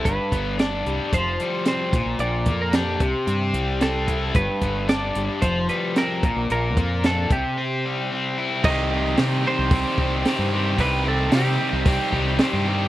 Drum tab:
CC |----------------|----------------|----------------|----------------|
HH |x-x-x-x-x-x-x-x-|x-x-x-x-x-x-x-x-|x-x-x-x-x-x-x-x-|x-x-x-x---------|
SD |----o-------o-o-|----o-------o---|----o-------o---|----o-----------|
BD |o-o-----o-----o-|--o---o-------o-|o-o-----o-----o-|--o---o---------|

CC |x---------------|----------------|
HH |----o---o---o---|o---o---o---o---|
SD |---oo-------o---|----o------oo---|
BD |o-------o-o-----|o-------o-o-----|